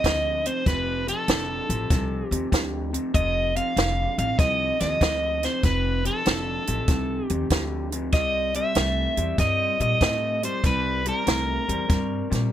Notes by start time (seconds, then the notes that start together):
Already playing: D#5
0.04 D2 F2 D3, kick, snare, closed hi-hat
0.46 F2 C3 C5, closed hi-hat
0.66 F1 F2 C3 B4, kick, snare, closed hi-hat
1.07 F2 C3 A4, closed hi-hat
1.28 F1 F2 D3, snare, closed hi-hat
1.69 A1 F2 C3, closed hi-hat
1.90 C2 F2 C3, kick, snare, closed hi-hat
2.28 D#2 F2 G4
2.32 C3, closed hi-hat
2.52 D2 F2 D3, kick, snare, closed hi-hat
2.93 F2 C3, closed hi-hat
3.14 F1 F2 C3 D#5, kick, closed hi-hat
3.56 F2 C3 F5, closed hi-hat
3.76 F1 F2 D3, snare, closed hi-hat
4.18 A1 F2 C3 F5, closed hi-hat
4.39 C2 F2 C3 D#5, kick, snare, closed hi-hat
4.80 D#2 F2 C3 D#5, snare, closed hi-hat
5.01 D2 F2 D3, kick, snare, closed hi-hat
5.43 F2 C3 C5, snare, closed hi-hat
5.63 F1 F2 C3 B4, kick, snare, closed hi-hat
6.05 F2 C3 A4, closed hi-hat
6.25 F1 F2 D3, snare, closed hi-hat
6.67 A1 F2 C3, closed hi-hat
6.88 C2 F2 C3, kick, snare, closed hi-hat
7.27 D#2 F2 C3 G4, closed hi-hat
7.50 D2 F2 D3, kick, snare, closed hi-hat
7.92 F2 C3, closed hi-hat
8.12 C2 C3 G3 D#5, kick, snare, closed hi-hat
8.54 C3 G3 E5, closed hi-hat
8.75 C2 C3 A3, snare, closed hi-hat
9.17 E2 C3 G3, closed hi-hat
9.38 G2 C3 G3 D#5, kick, snare, closed hi-hat
9.80 A#2 C3 G3 D#5, closed hi-hat
10.01 A2 C3 A3, kick, snare, closed hi-hat
10.43 C3 G3 C5, closed hi-hat
10.64 C2 C3 G3 B4, kick, snare, closed hi-hat
11.06 C3 G3 A#4, closed hi-hat
11.26 C2 C3 A3, snare, closed hi-hat
11.68 E2 C3 G3, closed hi-hat
11.88 G2 C3 G3, kick, snare, closed hi-hat
12.30 A#2 C3 G3, snare, closed hi-hat